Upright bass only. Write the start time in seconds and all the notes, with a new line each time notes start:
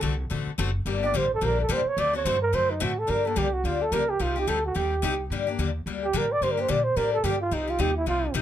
0.03 C2
0.31 A1
0.47 muted upright bass stroke
0.58 F#1
0.85 G1
1.14 A1
1.42 A#1
1.69 C2
1.85 muted upright bass stroke
1.97 D2
2.25 G2
2.53 F#2
2.81 A2
3.09 G2
3.36 C2
3.64 D2
3.92 C#2
4.20 C2
4.47 D2
4.76 D#2
5.03 C2
5.30 G2
5.58 D#2
5.86 D2
6.14 A2
6.41 G2
6.69 A#2
6.96 A2
7.24 G2
7.51 C2
7.79 D#2
8.07 C2
8.34 A1